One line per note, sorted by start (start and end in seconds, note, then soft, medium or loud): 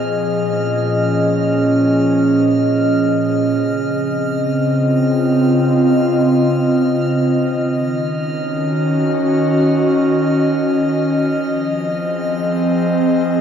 0.00 3.59 A#2 medium
0.00 3.59 F3 medium
0.00 5.15 G#4 medium
0.00 13.41 D#5 medium
0.00 13.41 F6 medium
0.41 3.59 C#4 medium
3.61 7.47 C#3 medium
3.91 7.47 C4 medium
4.67 7.47 F4 medium
7.47 11.28 D#3 medium
8.01 11.29 C#4 medium
8.36 11.28 F#4 medium
11.28 13.41 F3 medium
11.70 13.41 C4 medium
11.85 13.41 G#4 medium